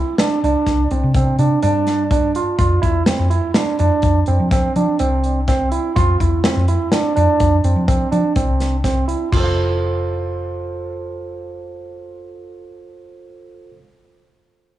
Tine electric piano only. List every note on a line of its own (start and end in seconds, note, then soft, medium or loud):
0.00 0.14 E4 medium
0.20 0.39 D4 medium
0.44 0.83 D4 medium
0.92 1.11 C4 medium
1.16 1.35 C4 medium
1.39 1.59 D4 medium
1.63 2.02 D4 medium
2.11 2.31 D4 medium
2.36 2.55 F4 medium
2.59 2.79 F4 medium
2.82 3.02 E4 medium
3.07 3.27 C4 medium
3.30 3.51 E4 medium
3.56 3.75 D4 medium
3.79 4.19 D4 medium
4.28 4.48 C4 medium
4.52 4.72 C4 medium
4.76 4.96 D4 medium
5.00 5.39 C4 medium
5.48 5.68 C4 medium
5.72 5.92 E4 medium
5.96 6.16 F4 medium
6.21 6.40 E4 medium
6.45 6.65 C4 medium
6.68 6.88 E4 medium
6.93 7.12 D4 medium
7.16 7.56 D4 medium
7.65 7.84 C4 medium
7.88 8.08 C4 medium
8.12 8.32 D4 medium
8.36 8.76 C4 medium
8.84 9.04 C4 medium
9.08 9.28 E4 medium
9.32 13.70 F4 medium
9.37 13.74 A4 medium
9.37 13.78 C5 medium
9.44 13.82 F5 medium